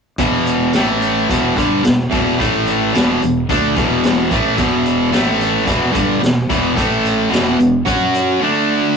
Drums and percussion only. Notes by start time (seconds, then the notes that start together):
0.18 kick, closed hi-hat
0.46 closed hi-hat
0.73 snare, closed hi-hat
1.02 closed hi-hat
1.30 kick, closed hi-hat
1.57 kick, closed hi-hat
1.84 snare, closed hi-hat
2.13 kick, closed hi-hat
2.40 kick, closed hi-hat
2.67 closed hi-hat
2.95 snare, closed hi-hat
3.22 closed hi-hat
3.49 kick, closed hi-hat
3.77 kick, closed hi-hat
4.03 snare, closed hi-hat
4.31 kick, closed hi-hat
4.58 kick, closed hi-hat
4.85 closed hi-hat
5.13 snare, closed hi-hat
5.41 closed hi-hat
5.67 kick, closed hi-hat
5.95 kick, closed hi-hat
6.23 snare, closed hi-hat
6.50 kick, closed hi-hat
6.77 kick, closed hi-hat
7.05 closed hi-hat
7.33 snare, closed hi-hat
7.60 closed hi-hat
7.86 kick, closed hi-hat
8.14 closed hi-hat